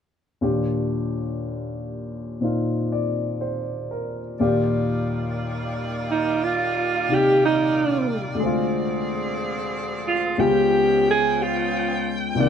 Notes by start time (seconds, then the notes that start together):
0.41 D#2 A#2 D4 F4 G4
2.41 A#2 C4 D#4 F4
2.92 D5
3.41 C5
3.91 A#4
4.39 D#2 A#2 D#3 G3 A#3 F4 G4 D5
6.11 D#4
6.44 F4
7.09 C3 D#4 G4
7.15 G4
7.45 D#4
8.35 D2 D3 F3 C4 G#4
8.40 G#3 C4
8.46 F4
10.08 F4
10.38 C#2 C#3 F3 G#3 B3 C#4 F4 G4 G5
11.10 G#4
11.43 F4
12.35 C2 C3 D#3 G3 A#3 C5
12.39 A#3 D5